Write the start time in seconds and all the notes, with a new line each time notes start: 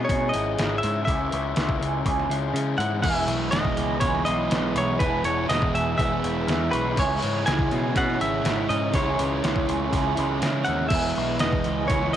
Already playing: C#3 G#3 C#4 E4 G#4
0.05 C#5
0.09 B2 G#4, kick, open hi-hat
0.29 E4 D#5
0.34 G#1 G#3 C#4, open hi-hat
0.56 G#1 C#3 G#3 C#4 E4, snare, open hi-hat
0.78 E4 E5
0.83 G#2 G#3 C#4, open hi-hat
1.05 C#2 C#3 G#3 C#4 G#4 E5, kick, open hi-hat
1.09 E4
1.31 C#2 G#3 C#4 E4 B4, open hi-hat
1.55 C#2 C#3 G#3 C#4 E4 B4, snare, open hi-hat
1.69 kick
1.80 C#2 G#4, open hi-hat
2.04 C#2 G#4, kick, open hi-hat
2.19 snare
2.29 C#2 G#3 C#4 E4, open hi-hat
2.54 C#3 G#3 C#4 E4, open hi-hat
2.58 E4
2.78 G#2 C#4 E4 F#5, open hi-hat
2.83 G#3
3.02 E1 E2 B2 E3 G#3 B3 E4 G#4 B4 E5 B5, kick, crash
3.07 E4
3.27 B1 B3 E4 B4, open hi-hat
3.32 G#3
3.51 E1 E3 G#3 B3 B4 D#5, snare, open hi-hat
3.56 E4
3.65 kick
3.76 C#2 G#4, open hi-hat
4.00 C#2 E2 B2 E3 G#3 B3 E4 G#4 C#5, kick, open hi-hat
4.15 snare
4.25 B1 B3 E4 D#5, open hi-hat
4.29 G#3
4.51 B1 E3 G#3 B3 E4, snare, open hi-hat
4.75 B1 B3 E4 C#5, open hi-hat
4.79 G#3
4.99 E1 E2 B2 E3 G#3 B3 E4 G#4 B4 C#6, kick, open hi-hat
5.03 E4
5.23 E1 G#3 B3 E4 B4 C#5, open hi-hat
5.48 E1 E3 G#3 B3 E4 B4 D#5, snare, open hi-hat
5.62 kick
5.73 E1 G#4 E5, open hi-hat
5.97 E1 E2 B2 E3 G#3 B3 E4 G#4 E5, kick, open hi-hat
6.22 E1 G#3 B3 E4, open hi-hat
6.47 E2 E3 G#3 B3 E4, snare, open hi-hat
6.71 B1 G#3 B3 E4 B4, open hi-hat
6.95 C#2 C#3 E3 G#3 C#4 E4 G#4 C#5, kick, crash
6.99 C#5
7.20 G#2 G#3 C#4 E4 B4, open hi-hat
7.45 C#2 C#3 G#3 C#4 E4 B4 G#5, snare, open hi-hat
7.59 kick
7.70 B2 G#4, open hi-hat
7.95 B2 C#3 E3 G#3 C#4 E4 G#4 F#5, kick, open hi-hat
8.10 snare
8.19 G#1 G#3 C#4 E4 E5, open hi-hat
8.44 G#1 C#3 G#3 C#4 E4, snare, open hi-hat
8.68 G#2 G#3 C#4 E4 D#5, open hi-hat
8.92 C#2 C#3 E3 G#3 C#4 E4 G#4 C#5, kick, open hi-hat
9.17 C#2 G#3 C#4 E4 B4, open hi-hat
9.41 C#2 C#3 G#3 C#4 E4 B4, snare, open hi-hat
9.56 kick
9.66 C#2 G#4, open hi-hat
9.90 C#2 C#3 E3 G#3 C#4 G#4, kick, open hi-hat
9.95 E4
10.15 C#2 G#3 C#4 E4, open hi-hat
10.40 C#3 G#3 C#4 E4, snare, open hi-hat
10.64 D#2 G#3 C#4 E4 F#5, open hi-hat
10.89 E1 E2 B2 E3 G#3 B3 G#4 B4 E5 B5, kick, crash
10.93 E3 G#3 B3 E4
11.15 B1 G#3 B3 E4 B4, open hi-hat
11.39 E1 E3 G#3 B3 B4 D#5, snare, open hi-hat
11.44 E4
11.52 kick
11.64 C#2 G#4, open hi-hat
11.88 C#2 E2 B2 E3 G#3 G#4 C#5, kick, open hi-hat
11.92 B3 E4
12.03 snare
12.13 D#5